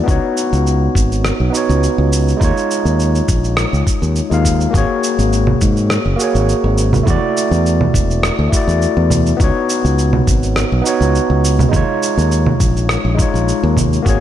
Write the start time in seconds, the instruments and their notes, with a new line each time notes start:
Already playing: tine electric piano E4
0.04 tine electric piano B3 D#4
0.08 fingered electric bass C#2, tine electric piano F#4 C#5, kick, shaker
0.37 shaker
0.53 fingered electric bass C#2, shaker
0.67 shaker
0.95 fingered electric bass G#1, kick, shaker
1.12 shaker
1.25 cross-stick, shaker
1.40 fingered electric bass B1
1.50 tine electric piano B3 D#4
1.54 tine electric piano F#4 C#5, shaker
1.69 fingered electric bass C#2, shaker
1.83 shaker
1.98 fingered electric bass C#2
2.13 shaker
2.28 shaker
2.37 fingered electric bass D#2, tine electric piano G#3 D#4, kick
2.42 tine electric piano F4 C#5, shaker
2.57 shaker
2.71 shaker
2.85 fingered electric bass D#2, shaker
3.00 shaker
3.15 shaker
3.28 fingered electric bass A#1, kick, shaker
3.44 shaker
3.57 cross-stick, shaker
3.73 fingered electric bass C#2, shaker
3.87 kick, shaker
4.02 fingered electric bass D#2, shaker
4.16 shaker
4.30 fingered electric bass D#2, tine electric piano G#3 D#4 F4 F5, shaker
4.45 kick, shaker
4.61 shaker
4.70 fingered electric bass G#1, tine electric piano A#3 F#4, kick
4.75 tine electric piano G#4 C#5, shaker
5.03 shaker
5.19 fingered electric bass G#1, shaker
5.33 shaker
5.47 low conga
5.61 fingered electric bass G#2, kick, shaker
5.77 shaker
5.90 cross-stick, shaker
6.06 fingered electric bass F#1
6.16 tine electric piano A#3 F#4, shaker
6.21 tine electric piano G#4 C#5
6.35 fingered electric bass G#1, shaker
6.49 shaker
6.64 fingered electric bass G#1
6.78 shaker
6.93 low conga, shaker
7.03 fingered electric bass E2, tine electric piano A3 E4, kick
7.07 tine electric piano F#4 D5, shaker
7.37 shaker
7.51 fingered electric bass E2, shaker
7.66 shaker
7.81 low conga
7.94 fingered electric bass E1, kick, shaker
8.11 shaker
8.23 cross-stick, shaker
8.39 fingered electric bass D2
8.49 tine electric piano A3 E4, kick, shaker
8.54 tine electric piano F#4 D5
8.68 fingered electric bass E2, shaker
8.82 shaker
8.97 fingered electric bass E2
9.10 low conga, shaker
9.26 shaker
9.37 fingered electric bass C#2, tine electric piano B3 D#4, kick, shaker
9.41 tine electric piano F#4 C#5
9.69 shaker
9.85 fingered electric bass C#2, shaker
9.99 shaker
10.13 low conga
10.27 fingered electric bass G#1, kick, shaker
10.43 shaker
10.56 cross-stick, shaker
10.72 fingered electric bass B1
10.82 tine electric piano B3 D#4
10.86 tine electric piano F#4 C#5, shaker
11.01 fingered electric bass C#2, shaker
11.15 shaker
11.30 fingered electric bass C#2
11.45 shaker
11.59 low conga, shaker
11.69 fingered electric bass D#2, tine electric piano G#3 D#4
11.73 tine electric piano F4 C#5, kick, shaker
12.03 shaker
12.18 fingered electric bass D#2, shaker
12.32 shaker
12.46 low conga
12.60 fingered electric bass A#1, kick, shaker
12.77 shaker
12.89 cross-stick, shaker
13.05 fingered electric bass A#1
13.15 tine electric piano G#3 D#4, kick
13.19 tine electric piano F4 C#5, shaker
13.34 fingered electric bass A#1, shaker
13.48 shaker
13.63 fingered electric bass D#2
13.77 kick, low conga, shaker
13.93 shaker
14.02 fingered electric bass G#1, tine electric piano A#3 F#4, kick, shaker
14.07 tine electric piano G#4 C#5